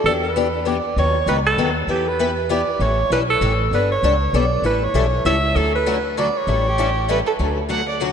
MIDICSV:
0, 0, Header, 1, 5, 480
1, 0, Start_track
1, 0, Key_signature, 2, "major"
1, 0, Tempo, 305966
1, 77, Time_signature, 3, 2, 24, 8
1, 12743, End_track
2, 0, Start_track
2, 0, Title_t, "Alto saxophone"
2, 0, Program_c, 0, 65
2, 92, Note_on_c, 0, 69, 83
2, 214, Note_off_c, 0, 69, 0
2, 371, Note_on_c, 0, 71, 80
2, 1053, Note_on_c, 0, 74, 87
2, 1077, Note_off_c, 0, 71, 0
2, 1525, Note_off_c, 0, 74, 0
2, 1558, Note_on_c, 0, 73, 92
2, 1985, Note_off_c, 0, 73, 0
2, 2020, Note_on_c, 0, 71, 78
2, 2140, Note_off_c, 0, 71, 0
2, 2301, Note_on_c, 0, 69, 89
2, 2735, Note_off_c, 0, 69, 0
2, 2988, Note_on_c, 0, 67, 86
2, 3268, Note_on_c, 0, 71, 90
2, 3291, Note_off_c, 0, 67, 0
2, 3933, Note_off_c, 0, 71, 0
2, 3947, Note_on_c, 0, 74, 92
2, 4419, Note_on_c, 0, 73, 96
2, 4443, Note_off_c, 0, 74, 0
2, 4888, Note_off_c, 0, 73, 0
2, 4905, Note_on_c, 0, 71, 90
2, 5023, Note_off_c, 0, 71, 0
2, 5178, Note_on_c, 0, 69, 89
2, 5614, Note_off_c, 0, 69, 0
2, 5875, Note_on_c, 0, 71, 95
2, 6116, Note_off_c, 0, 71, 0
2, 6150, Note_on_c, 0, 73, 98
2, 6767, Note_off_c, 0, 73, 0
2, 6831, Note_on_c, 0, 74, 94
2, 7261, Note_off_c, 0, 74, 0
2, 7312, Note_on_c, 0, 71, 96
2, 7592, Note_on_c, 0, 73, 91
2, 7616, Note_off_c, 0, 71, 0
2, 8242, Note_off_c, 0, 73, 0
2, 8252, Note_on_c, 0, 76, 101
2, 8730, Note_on_c, 0, 69, 100
2, 8754, Note_off_c, 0, 76, 0
2, 9001, Note_off_c, 0, 69, 0
2, 9025, Note_on_c, 0, 71, 96
2, 9645, Note_off_c, 0, 71, 0
2, 9715, Note_on_c, 0, 74, 95
2, 9992, Note_on_c, 0, 73, 100
2, 10016, Note_off_c, 0, 74, 0
2, 11415, Note_off_c, 0, 73, 0
2, 12743, End_track
3, 0, Start_track
3, 0, Title_t, "Violin"
3, 0, Program_c, 1, 40
3, 10451, Note_on_c, 1, 67, 82
3, 11078, Note_off_c, 1, 67, 0
3, 11139, Note_on_c, 1, 71, 102
3, 11260, Note_off_c, 1, 71, 0
3, 11397, Note_on_c, 1, 69, 77
3, 11488, Note_off_c, 1, 69, 0
3, 12089, Note_on_c, 1, 78, 71
3, 12343, Note_off_c, 1, 78, 0
3, 12366, Note_on_c, 1, 74, 50
3, 12465, Note_off_c, 1, 74, 0
3, 12743, End_track
4, 0, Start_track
4, 0, Title_t, "Steel-string acoustic guitar"
4, 0, Program_c, 2, 25
4, 91, Note_on_c, 2, 52, 62
4, 98, Note_on_c, 2, 59, 67
4, 99, Note_on_c, 2, 62, 70
4, 103, Note_on_c, 2, 67, 72
4, 385, Note_off_c, 2, 52, 0
4, 388, Note_off_c, 2, 59, 0
4, 388, Note_off_c, 2, 62, 0
4, 390, Note_off_c, 2, 67, 0
4, 563, Note_on_c, 2, 59, 89
4, 565, Note_on_c, 2, 52, 83
4, 575, Note_on_c, 2, 62, 91
4, 575, Note_on_c, 2, 67, 95
4, 724, Note_off_c, 2, 59, 0
4, 725, Note_off_c, 2, 52, 0
4, 730, Note_off_c, 2, 62, 0
4, 730, Note_off_c, 2, 67, 0
4, 1023, Note_on_c, 2, 52, 91
4, 1030, Note_on_c, 2, 59, 83
4, 1031, Note_on_c, 2, 62, 83
4, 1042, Note_on_c, 2, 67, 94
4, 1194, Note_off_c, 2, 52, 0
4, 1197, Note_off_c, 2, 59, 0
4, 1198, Note_off_c, 2, 62, 0
4, 1203, Note_off_c, 2, 67, 0
4, 1531, Note_on_c, 2, 51, 62
4, 1531, Note_on_c, 2, 54, 61
4, 1538, Note_on_c, 2, 63, 66
4, 1539, Note_on_c, 2, 59, 61
4, 1543, Note_on_c, 2, 69, 66
4, 1824, Note_off_c, 2, 54, 0
4, 1825, Note_off_c, 2, 51, 0
4, 1828, Note_off_c, 2, 59, 0
4, 1828, Note_off_c, 2, 63, 0
4, 1830, Note_off_c, 2, 69, 0
4, 1996, Note_on_c, 2, 51, 96
4, 2001, Note_on_c, 2, 54, 91
4, 2004, Note_on_c, 2, 63, 106
4, 2005, Note_on_c, 2, 59, 98
4, 2010, Note_on_c, 2, 69, 99
4, 2160, Note_off_c, 2, 51, 0
4, 2163, Note_off_c, 2, 54, 0
4, 2164, Note_off_c, 2, 59, 0
4, 2164, Note_off_c, 2, 63, 0
4, 2167, Note_off_c, 2, 69, 0
4, 2482, Note_on_c, 2, 59, 93
4, 2483, Note_on_c, 2, 51, 86
4, 2487, Note_on_c, 2, 54, 79
4, 2488, Note_on_c, 2, 63, 93
4, 2489, Note_on_c, 2, 69, 93
4, 2643, Note_off_c, 2, 51, 0
4, 2643, Note_off_c, 2, 59, 0
4, 2645, Note_off_c, 2, 54, 0
4, 2646, Note_off_c, 2, 63, 0
4, 2646, Note_off_c, 2, 69, 0
4, 2952, Note_on_c, 2, 59, 64
4, 2955, Note_on_c, 2, 52, 64
4, 2961, Note_on_c, 2, 67, 68
4, 2964, Note_on_c, 2, 64, 66
4, 2966, Note_on_c, 2, 71, 69
4, 3255, Note_off_c, 2, 59, 0
4, 3257, Note_off_c, 2, 52, 0
4, 3259, Note_off_c, 2, 67, 0
4, 3261, Note_off_c, 2, 64, 0
4, 3262, Note_off_c, 2, 71, 0
4, 3440, Note_on_c, 2, 52, 87
4, 3445, Note_on_c, 2, 59, 88
4, 3445, Note_on_c, 2, 64, 93
4, 3449, Note_on_c, 2, 67, 101
4, 3453, Note_on_c, 2, 71, 102
4, 3602, Note_off_c, 2, 52, 0
4, 3604, Note_off_c, 2, 59, 0
4, 3604, Note_off_c, 2, 64, 0
4, 3607, Note_off_c, 2, 67, 0
4, 3609, Note_off_c, 2, 71, 0
4, 3911, Note_on_c, 2, 52, 86
4, 3922, Note_on_c, 2, 59, 91
4, 3925, Note_on_c, 2, 64, 93
4, 3925, Note_on_c, 2, 67, 93
4, 3927, Note_on_c, 2, 71, 99
4, 4078, Note_off_c, 2, 52, 0
4, 4083, Note_off_c, 2, 59, 0
4, 4084, Note_off_c, 2, 64, 0
4, 4085, Note_off_c, 2, 67, 0
4, 4086, Note_off_c, 2, 71, 0
4, 4399, Note_on_c, 2, 52, 68
4, 4399, Note_on_c, 2, 61, 69
4, 4402, Note_on_c, 2, 55, 65
4, 4407, Note_on_c, 2, 64, 71
4, 4408, Note_on_c, 2, 69, 67
4, 4698, Note_off_c, 2, 52, 0
4, 4698, Note_off_c, 2, 61, 0
4, 4700, Note_off_c, 2, 55, 0
4, 4702, Note_off_c, 2, 64, 0
4, 4703, Note_off_c, 2, 69, 0
4, 4888, Note_on_c, 2, 52, 94
4, 4892, Note_on_c, 2, 55, 96
4, 4893, Note_on_c, 2, 61, 95
4, 4895, Note_on_c, 2, 64, 103
4, 4897, Note_on_c, 2, 69, 94
4, 5046, Note_off_c, 2, 52, 0
4, 5048, Note_off_c, 2, 55, 0
4, 5048, Note_off_c, 2, 61, 0
4, 5049, Note_off_c, 2, 64, 0
4, 5050, Note_off_c, 2, 69, 0
4, 5352, Note_on_c, 2, 52, 86
4, 5362, Note_on_c, 2, 55, 79
4, 5362, Note_on_c, 2, 61, 87
4, 5364, Note_on_c, 2, 64, 91
4, 5367, Note_on_c, 2, 69, 95
4, 5518, Note_off_c, 2, 52, 0
4, 5523, Note_off_c, 2, 55, 0
4, 5523, Note_off_c, 2, 61, 0
4, 5524, Note_off_c, 2, 64, 0
4, 5525, Note_off_c, 2, 69, 0
4, 5847, Note_on_c, 2, 55, 65
4, 5854, Note_on_c, 2, 62, 74
4, 5859, Note_on_c, 2, 59, 69
4, 5866, Note_on_c, 2, 69, 73
4, 6142, Note_off_c, 2, 55, 0
4, 6146, Note_off_c, 2, 62, 0
4, 6148, Note_off_c, 2, 59, 0
4, 6152, Note_off_c, 2, 69, 0
4, 6327, Note_on_c, 2, 55, 88
4, 6338, Note_on_c, 2, 59, 89
4, 6338, Note_on_c, 2, 69, 108
4, 6340, Note_on_c, 2, 62, 90
4, 6485, Note_off_c, 2, 55, 0
4, 6491, Note_off_c, 2, 59, 0
4, 6491, Note_off_c, 2, 69, 0
4, 6492, Note_off_c, 2, 62, 0
4, 6808, Note_on_c, 2, 55, 86
4, 6808, Note_on_c, 2, 59, 93
4, 6814, Note_on_c, 2, 62, 91
4, 6818, Note_on_c, 2, 69, 93
4, 6966, Note_off_c, 2, 55, 0
4, 6966, Note_off_c, 2, 59, 0
4, 6969, Note_off_c, 2, 62, 0
4, 6971, Note_off_c, 2, 69, 0
4, 7272, Note_on_c, 2, 52, 68
4, 7283, Note_on_c, 2, 55, 64
4, 7289, Note_on_c, 2, 61, 69
4, 7289, Note_on_c, 2, 64, 72
4, 7290, Note_on_c, 2, 69, 77
4, 7575, Note_off_c, 2, 52, 0
4, 7580, Note_off_c, 2, 55, 0
4, 7583, Note_off_c, 2, 61, 0
4, 7583, Note_off_c, 2, 64, 0
4, 7584, Note_off_c, 2, 69, 0
4, 7753, Note_on_c, 2, 52, 91
4, 7757, Note_on_c, 2, 55, 88
4, 7765, Note_on_c, 2, 61, 90
4, 7767, Note_on_c, 2, 64, 111
4, 7770, Note_on_c, 2, 69, 101
4, 7918, Note_off_c, 2, 52, 0
4, 7920, Note_off_c, 2, 55, 0
4, 7924, Note_off_c, 2, 61, 0
4, 7925, Note_off_c, 2, 64, 0
4, 7927, Note_off_c, 2, 69, 0
4, 8239, Note_on_c, 2, 52, 87
4, 8240, Note_on_c, 2, 55, 96
4, 8251, Note_on_c, 2, 64, 102
4, 8252, Note_on_c, 2, 61, 89
4, 8256, Note_on_c, 2, 69, 98
4, 8401, Note_off_c, 2, 52, 0
4, 8402, Note_off_c, 2, 55, 0
4, 8407, Note_off_c, 2, 64, 0
4, 8408, Note_off_c, 2, 61, 0
4, 8410, Note_off_c, 2, 69, 0
4, 8719, Note_on_c, 2, 50, 60
4, 8720, Note_on_c, 2, 54, 65
4, 8727, Note_on_c, 2, 57, 68
4, 8729, Note_on_c, 2, 61, 77
4, 8729, Note_on_c, 2, 66, 70
4, 9018, Note_off_c, 2, 50, 0
4, 9019, Note_off_c, 2, 54, 0
4, 9022, Note_off_c, 2, 57, 0
4, 9023, Note_off_c, 2, 61, 0
4, 9023, Note_off_c, 2, 66, 0
4, 9197, Note_on_c, 2, 50, 97
4, 9201, Note_on_c, 2, 54, 101
4, 9205, Note_on_c, 2, 57, 105
4, 9207, Note_on_c, 2, 61, 103
4, 9211, Note_on_c, 2, 66, 97
4, 9360, Note_off_c, 2, 50, 0
4, 9362, Note_off_c, 2, 54, 0
4, 9364, Note_off_c, 2, 57, 0
4, 9365, Note_off_c, 2, 61, 0
4, 9367, Note_off_c, 2, 66, 0
4, 9684, Note_on_c, 2, 54, 89
4, 9687, Note_on_c, 2, 50, 84
4, 9691, Note_on_c, 2, 57, 93
4, 9696, Note_on_c, 2, 66, 99
4, 9700, Note_on_c, 2, 61, 101
4, 9844, Note_off_c, 2, 54, 0
4, 9845, Note_off_c, 2, 50, 0
4, 9848, Note_off_c, 2, 57, 0
4, 9850, Note_off_c, 2, 66, 0
4, 9852, Note_off_c, 2, 61, 0
4, 10153, Note_on_c, 2, 52, 63
4, 10160, Note_on_c, 2, 55, 65
4, 10162, Note_on_c, 2, 61, 65
4, 10166, Note_on_c, 2, 64, 68
4, 10170, Note_on_c, 2, 69, 74
4, 10456, Note_off_c, 2, 52, 0
4, 10459, Note_off_c, 2, 55, 0
4, 10460, Note_off_c, 2, 61, 0
4, 10462, Note_off_c, 2, 64, 0
4, 10464, Note_off_c, 2, 69, 0
4, 10638, Note_on_c, 2, 52, 95
4, 10643, Note_on_c, 2, 55, 93
4, 10649, Note_on_c, 2, 69, 101
4, 10651, Note_on_c, 2, 61, 95
4, 10655, Note_on_c, 2, 64, 91
4, 10801, Note_off_c, 2, 52, 0
4, 10804, Note_off_c, 2, 55, 0
4, 10807, Note_off_c, 2, 69, 0
4, 10808, Note_off_c, 2, 61, 0
4, 10810, Note_off_c, 2, 64, 0
4, 11112, Note_on_c, 2, 52, 84
4, 11118, Note_on_c, 2, 55, 91
4, 11124, Note_on_c, 2, 61, 89
4, 11124, Note_on_c, 2, 64, 97
4, 11133, Note_on_c, 2, 69, 101
4, 11279, Note_off_c, 2, 52, 0
4, 11281, Note_off_c, 2, 55, 0
4, 11284, Note_off_c, 2, 61, 0
4, 11285, Note_off_c, 2, 64, 0
4, 11289, Note_off_c, 2, 69, 0
4, 11593, Note_on_c, 2, 50, 67
4, 11597, Note_on_c, 2, 57, 67
4, 11598, Note_on_c, 2, 54, 61
4, 11603, Note_on_c, 2, 61, 63
4, 11610, Note_on_c, 2, 66, 61
4, 11897, Note_off_c, 2, 50, 0
4, 11898, Note_off_c, 2, 57, 0
4, 11899, Note_off_c, 2, 54, 0
4, 11901, Note_off_c, 2, 61, 0
4, 11905, Note_off_c, 2, 66, 0
4, 12057, Note_on_c, 2, 50, 84
4, 12070, Note_on_c, 2, 54, 91
4, 12071, Note_on_c, 2, 57, 86
4, 12072, Note_on_c, 2, 61, 89
4, 12076, Note_on_c, 2, 66, 100
4, 12232, Note_off_c, 2, 50, 0
4, 12238, Note_off_c, 2, 54, 0
4, 12239, Note_off_c, 2, 57, 0
4, 12239, Note_off_c, 2, 61, 0
4, 12241, Note_off_c, 2, 66, 0
4, 12550, Note_on_c, 2, 50, 77
4, 12561, Note_on_c, 2, 54, 92
4, 12561, Note_on_c, 2, 57, 92
4, 12568, Note_on_c, 2, 61, 86
4, 12572, Note_on_c, 2, 66, 97
4, 12719, Note_off_c, 2, 50, 0
4, 12724, Note_off_c, 2, 54, 0
4, 12724, Note_off_c, 2, 57, 0
4, 12728, Note_off_c, 2, 61, 0
4, 12730, Note_off_c, 2, 66, 0
4, 12743, End_track
5, 0, Start_track
5, 0, Title_t, "Upright bass"
5, 0, Program_c, 3, 32
5, 66, Note_on_c, 3, 40, 84
5, 1222, Note_off_c, 3, 40, 0
5, 1514, Note_on_c, 3, 39, 85
5, 1899, Note_off_c, 3, 39, 0
5, 1982, Note_on_c, 3, 37, 88
5, 2397, Note_off_c, 3, 37, 0
5, 2455, Note_on_c, 3, 39, 85
5, 2872, Note_off_c, 3, 39, 0
5, 2937, Note_on_c, 3, 40, 79
5, 4097, Note_off_c, 3, 40, 0
5, 4384, Note_on_c, 3, 33, 83
5, 4773, Note_off_c, 3, 33, 0
5, 4868, Note_on_c, 3, 35, 83
5, 5280, Note_off_c, 3, 35, 0
5, 5351, Note_on_c, 3, 33, 81
5, 5761, Note_off_c, 3, 33, 0
5, 5824, Note_on_c, 3, 31, 80
5, 6213, Note_off_c, 3, 31, 0
5, 6314, Note_on_c, 3, 37, 82
5, 6723, Note_off_c, 3, 37, 0
5, 6794, Note_on_c, 3, 35, 88
5, 7203, Note_off_c, 3, 35, 0
5, 7251, Note_on_c, 3, 33, 82
5, 7645, Note_off_c, 3, 33, 0
5, 7747, Note_on_c, 3, 35, 87
5, 8159, Note_off_c, 3, 35, 0
5, 8235, Note_on_c, 3, 37, 89
5, 8644, Note_off_c, 3, 37, 0
5, 8713, Note_on_c, 3, 38, 84
5, 9867, Note_off_c, 3, 38, 0
5, 10150, Note_on_c, 3, 33, 85
5, 11306, Note_off_c, 3, 33, 0
5, 11600, Note_on_c, 3, 38, 76
5, 12743, Note_off_c, 3, 38, 0
5, 12743, End_track
0, 0, End_of_file